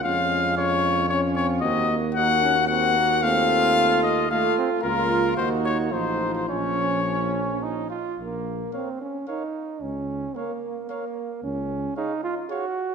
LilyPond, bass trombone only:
\new Staff \with { instrumentName = "Bass trombone" } { \clef bass \time 3/4 \key bes \minor \tempo 4 = 112 f,2. | ees,2.~ | ees,2~ ees,8 r8 | des,4 ees,4 a,,4 |
bes,,2~ bes,,8 r8 | bes,,4 r2 | des,4 r2 | des,4 r2 | }